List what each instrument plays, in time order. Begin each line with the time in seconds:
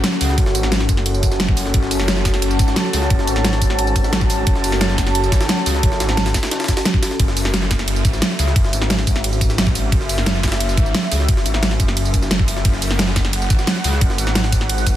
Already playing: analog synth pad C#4 F#4 A4 F#5
0.04 snare, closed hi-hat, ride
0.12 snare
0.21 detuned saw bass C#2, open hi-hat, ride, tambourine
0.29 snare
0.38 detuned saw bass F#1, kick, closed hi-hat, ride
0.46 snare
0.55 detuned saw bass G#1, closed hi-hat, ride, tambourine
0.63 snare
0.72 snare, closed hi-hat, ride
0.80 snare
0.89 detuned saw bass F#1, kick, closed hi-hat, ride, tambourine
0.97 snare
1.06 closed hi-hat, ride
1.14 tambourine
1.23 kick, closed hi-hat, ride, tambourine
1.31 snare, tambourine
1.40 snare, closed hi-hat, ride
1.49 kick
1.57 open hi-hat, ride, tambourine
1.66 snare
1.74 detuned saw bass F#1, analog synth pad A5, kick, closed hi-hat, ride
1.83 snare
1.91 closed hi-hat, open hi-hat, tambourine
2.00 snare
2.08 snare, closed hi-hat, ride
2.17 snare
2.25 kick, snare, closed hi-hat, ride, tambourine
2.34 snare, ride
2.42 closed hi-hat, ride
2.51 tambourine
2.59 detuned saw bass G#1, kick, closed hi-hat, ride, tambourine
2.68 snare, tambourine
2.76 snare, closed hi-hat, ride
2.85 snare
2.93 detuned saw bass C#2, open hi-hat, ride, tambourine
3.02 snare
3.10 detuned saw bass F#1, kick, closed hi-hat, ride
3.19 snare
3.27 detuned saw bass G#1, closed hi-hat, ride, tambourine
3.36 snare
3.44 snare, closed hi-hat, ride
3.53 snare
3.62 detuned saw bass G#1, kick, closed hi-hat, ride, tambourine
3.70 snare
3.79 closed hi-hat, ride
3.87 tambourine
3.96 kick, closed hi-hat, ride, tambourine
4.04 snare, tambourine
4.13 detuned saw bass G#1, snare, closed hi-hat, ride
4.21 kick, snare
4.30 open hi-hat, ride, tambourine
4.47 detuned saw bass F#1, kick, closed hi-hat, ride
4.55 snare
4.64 closed hi-hat, open hi-hat, tambourine
4.72 snare
4.81 snare, closed hi-hat, ride
4.90 snare
4.98 kick, snare, closed hi-hat, ride, tambourine
5.07 snare, ride
5.15 closed hi-hat, ride
5.24 tambourine
5.32 detuned saw bass G#1, kick, snare, closed hi-hat, ride, tambourine
5.41 snare, ride, tambourine
5.49 snare, closed hi-hat, ride
5.58 snare
5.66 detuned saw bass C#2, open hi-hat, ride, tambourine
5.75 snare
5.83 detuned saw bass F#1, kick, closed hi-hat, ride
5.92 snare
6.00 detuned saw bass G#1, snare, closed hi-hat, ride, tambourine
6.09 snare
6.17 snare, closed hi-hat, ride
6.26 snare, ride
6.34 kick, snare, closed hi-hat, ride, tambourine
6.43 snare, ride
6.51 snare, closed hi-hat, ride
6.60 snare, ride, tambourine
6.64 snare, ride
6.68 kick, snare, closed hi-hat, ride, tambourine
6.77 snare, ride, tambourine
6.85 snare, closed hi-hat, ride
6.94 kick, snare
7.03 snare, open hi-hat, ride, tambourine
7.11 snare
7.20 detuned saw bass F#1, analog synth pad E5, kick, closed hi-hat, ride
7.28 snare
7.37 closed hi-hat, open hi-hat, ride, tambourine
7.45 snare
7.54 snare, closed hi-hat, ride
7.62 snare
7.71 kick, snare, closed hi-hat, ride, tambourine
7.79 snare, ride
7.88 closed hi-hat, ride
7.96 tambourine
8.05 detuned saw bass G#1, kick, closed hi-hat, ride, tambourine
8.13 snare, tambourine
8.22 snare, closed hi-hat, ride
8.30 snare
8.39 detuned saw bass C#2, open hi-hat, ride, tambourine
8.47 snare
8.56 detuned saw bass F#1, kick, closed hi-hat, ride
8.65 snare
8.73 detuned saw bass G#1, closed hi-hat, ride, tambourine
8.82 snare
8.90 snare, closed hi-hat, ride
8.99 snare
9.07 detuned saw bass G#1, kick, closed hi-hat, ride, tambourine
9.16 snare
9.24 closed hi-hat, ride
9.33 tambourine
9.41 kick, closed hi-hat, ride, tambourine
9.50 snare, tambourine
9.58 detuned saw bass G#1, snare, closed hi-hat, ride
9.67 kick, snare
9.75 open hi-hat, ride, tambourine
9.92 detuned saw bass F#1, kick, closed hi-hat, ride
10.01 snare
10.09 closed hi-hat, open hi-hat, ride, tambourine
10.18 snare
10.26 snare, closed hi-hat, ride
10.35 snare
10.43 kick, snare, closed hi-hat, ride, tambourine
10.48 snare, ride
10.52 snare, ride
10.60 closed hi-hat, ride
10.69 tambourine
10.77 detuned saw bass G#1, kick, closed hi-hat, ride, tambourine
10.86 tambourine
10.94 snare, closed hi-hat, ride
11.03 snare
11.12 detuned saw bass C#2, open hi-hat, ride, tambourine
11.20 snare
11.29 detuned saw bass F#1, kick, closed hi-hat, ride
11.37 snare
11.46 detuned saw bass G#1, closed hi-hat, ride, tambourine
11.54 snare
11.63 snare, closed hi-hat, ride
11.71 snare
11.80 detuned saw bass F#1, kick, closed hi-hat, ride, tambourine
11.88 snare
11.97 closed hi-hat, ride
12.05 tambourine
12.14 kick, closed hi-hat, ride, tambourine
12.22 snare, tambourine
12.31 snare, closed hi-hat, ride
12.39 kick
12.48 open hi-hat, ride, tambourine
12.57 snare
12.65 detuned saw bass F#1, analog synth pad F#5, kick, closed hi-hat, ride
12.74 snare
12.82 closed hi-hat, open hi-hat, ride, tambourine
12.91 snare
12.99 snare, closed hi-hat, ride
13.08 snare
13.16 kick, snare, closed hi-hat, ride, tambourine
13.25 snare, ride
13.33 closed hi-hat, ride
13.42 tambourine
13.50 detuned saw bass G#1, kick, closed hi-hat, ride, tambourine
13.59 snare, tambourine
13.67 snare, closed hi-hat, ride
13.76 snare
13.84 detuned saw bass C#2, open hi-hat, ride, tambourine
13.93 snare
14.01 detuned saw bass F#1, kick, closed hi-hat, ride
14.10 snare
14.18 detuned saw bass G#1, closed hi-hat, ride, tambourine
14.27 snare
14.35 snare, closed hi-hat, ride
14.44 snare
14.52 detuned saw bass G#1, kick, closed hi-hat, ride, tambourine
14.61 snare
14.70 closed hi-hat, ride
14.78 tambourine
14.87 kick, closed hi-hat, ride, tambourine